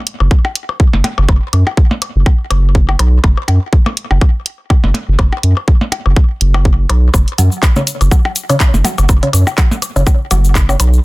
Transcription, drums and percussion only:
0.07 closed hi-hat
0.20 percussion blips
0.31 kick
0.45 percussion blips
0.55 closed hi-hat
0.69 percussion blips
0.80 kick
0.93 percussion blips
1.04 closed hi-hat, percussion blips
1.18 percussion blips
1.29 kick, percussion blips
1.53 closed hi-hat, percussion blips
1.67 percussion blips
1.77 kick
1.91 percussion blips
2.02 closed hi-hat, percussion blips
2.26 kick, percussion blips
2.50 closed hi-hat, percussion blips
2.75 kick
2.89 percussion blips
2.99 closed hi-hat, percussion blips
3.24 kick, percussion blips
3.37 percussion blips
3.48 closed hi-hat, percussion blips
3.73 kick
3.86 percussion blips
3.97 closed hi-hat
4.11 percussion blips
4.21 kick, percussion blips
4.46 closed hi-hat
4.70 kick, percussion blips
4.84 percussion blips
4.94 closed hi-hat, percussion blips
5.19 kick, percussion blips
5.32 percussion blips
5.43 closed hi-hat
5.57 percussion blips
5.68 kick
5.81 percussion blips
5.92 closed hi-hat, percussion blips
6.06 percussion blips
6.16 kick
6.41 closed hi-hat
6.54 percussion blips
6.65 kick
6.89 closed hi-hat, percussion blips
7.14 kick, cabasa, percussion blips
7.28 closed hi-hat
7.38 closed hi-hat, cabasa
7.52 cabasa
7.63 kick, clap, closed hi-hat, percussion blips, cabasa
7.76 percussion blips, cabasa
7.87 closed hi-hat, cabasa
8.01 closed hi-hat, cabasa, percussion blips
8.11 kick, cabasa
8.25 percussion blips
8.36 closed hi-hat, cabasa
8.49 closed hi-hat, cabasa, percussion blips
8.60 kick, clap, cabasa
8.74 percussion blips, cabasa
8.84 closed hi-hat, percussion blips, cabasa
8.98 cabasa, percussion blips
9.09 kick, cabasa, percussion blips
9.23 closed hi-hat
9.33 closed hi-hat, cabasa, percussion blips
9.47 percussion blips, cabasa
9.58 kick, clap, closed hi-hat, cabasa
9.71 percussion blips, cabasa
9.82 closed hi-hat, cabasa, percussion blips
9.96 cabasa
10.07 kick, percussion blips, cabasa
10.31 closed hi-hat, cabasa, percussion blips
10.44 cabasa
10.55 kick, clap, cabasa
10.69 percussion blips, cabasa
10.80 closed hi-hat, cabasa, percussion blips
10.93 cabasa

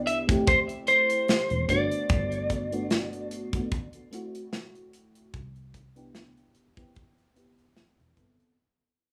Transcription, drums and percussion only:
0.07 closed hi-hat
0.29 kick, closed hi-hat
0.47 kick, closed hi-hat
0.69 closed hi-hat
0.87 closed hi-hat
1.10 closed hi-hat
1.28 snare, closed hi-hat
1.50 closed hi-hat
1.69 kick, closed hi-hat
1.91 closed hi-hat
2.09 kick, closed hi-hat
2.32 closed hi-hat
2.50 kick, closed hi-hat
2.72 closed hi-hat
2.90 snare, closed hi-hat
3.13 closed hi-hat
3.31 closed hi-hat
3.53 kick, closed hi-hat
3.72 kick, closed hi-hat
3.93 closed hi-hat
4.13 closed hi-hat
4.35 closed hi-hat
4.53 snare, closed hi-hat
4.75 closed hi-hat
4.93 closed hi-hat
5.15 closed hi-hat
5.34 kick, closed hi-hat
5.56 closed hi-hat
5.74 kick, closed hi-hat
5.96 closed hi-hat
6.15 snare, closed hi-hat
6.37 closed hi-hat
6.55 closed hi-hat
6.77 kick, closed hi-hat
6.95 kick, closed hi-hat
7.18 closed hi-hat
7.36 closed hi-hat
7.59 closed hi-hat
7.76 snare, closed hi-hat
8.00 closed hi-hat
8.17 kick, closed hi-hat
8.40 closed hi-hat

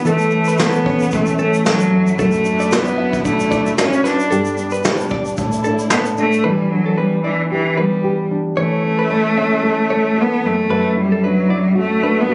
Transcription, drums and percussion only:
0.05 shaker
0.18 shaker
0.21 shaker
0.31 shaker
0.45 shaker
0.48 shaker
0.58 snare, shaker
0.60 shaker
0.72 shaker
0.75 shaker
0.86 kick
0.99 shaker
1.02 shaker
1.11 kick, shaker
1.14 shaker
1.26 shaker
1.29 shaker
1.39 shaker
1.53 shaker
1.66 snare, shaker
1.79 shaker
2.07 shaker
2.19 kick, shaker
2.31 shaker
2.34 shaker
2.44 shaker
2.59 shaker
2.61 shaker
2.71 snare, shaker
2.73 shaker
2.85 shaker
2.87 shaker
3.13 kick, shaker
3.25 kick, shaker
3.39 shaker
3.52 kick, shaker
3.66 shaker
3.78 snare, shaker
3.93 shaker
4.05 snare, shaker
4.19 shaker
4.31 shaker
4.45 shaker
4.46 shaker
4.57 shaker
4.70 shaker
4.74 shaker
4.84 snare, shaker
4.86 shaker
4.97 shaker
5.00 shaker
5.09 kick, shaker
5.25 shaker
5.27 shaker
5.37 kick, shaker
5.52 shaker
5.64 shaker
5.79 shaker
5.90 snare, shaker
6.05 shaker
6.17 shaker
6.32 shaker
6.33 shaker

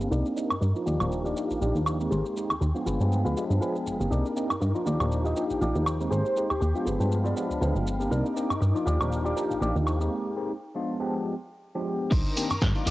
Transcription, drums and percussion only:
0.01 shaker
0.12 shaker
0.26 shaker
0.37 shaker
0.50 high woodblock, shaker
0.62 shaker
0.76 shaker
0.87 shaker
1.00 high woodblock, shaker
1.12 shaker
1.26 shaker
1.37 shaker
1.51 shaker
1.62 shaker
1.76 shaker
1.86 high woodblock, shaker
2.01 shaker
2.12 shaker
2.26 shaker
2.37 shaker
2.50 high woodblock, shaker
2.62 shaker
2.76 shaker
2.87 shaker
3.01 shaker
3.12 shaker
3.26 shaker
3.37 shaker
3.51 shaker
3.62 shaker
3.76 shaker
3.87 shaker
4.00 tambourine, shaker
4.12 shaker
4.26 shaker
4.36 tambourine, shaker
4.50 high woodblock, shaker
4.62 shaker
4.76 shaker
4.87 tambourine, shaker
5.00 high woodblock, shaker
5.12 shaker
5.26 shaker
5.36 tambourine, shaker
5.50 shaker
5.62 shaker
5.75 shaker
5.86 high woodblock, shaker
6.01 shaker
6.12 shaker
6.26 shaker
6.36 tambourine, shaker
6.50 high woodblock, shaker
6.62 shaker
6.76 shaker
6.86 tambourine, shaker
7.01 tambourine, shaker
7.12 tambourine, shaker
7.26 shaker
7.37 tambourine, shaker
7.51 shaker
7.61 tambourine, shaker
7.76 shaker
7.87 shaker
8.00 tambourine, shaker
8.11 tambourine, shaker
8.26 shaker
8.36 tambourine, shaker
8.49 tambourine, high woodblock, shaker
8.61 tambourine, shaker
8.76 shaker
8.87 tambourine, shaker
9.00 tambourine, high woodblock, shaker
9.12 shaker
9.26 shaker
9.36 tambourine, shaker
9.50 tambourine, shaker
9.62 tambourine, shaker
9.76 shaker
9.86 tambourine, high woodblock, shaker
10.00 tambourine, shaker
12.12 kick, closed hi-hat, tambourine, crash, shaker
12.25 closed hi-hat, tambourine
12.36 open hi-hat, ride, tambourine, shaker
12.50 closed hi-hat, tambourine, high woodblock, shaker
12.61 kick, snare, closed hi-hat, tambourine, shaker
12.75 closed hi-hat, tambourine
12.87 open hi-hat, ride, tambourine, shaker

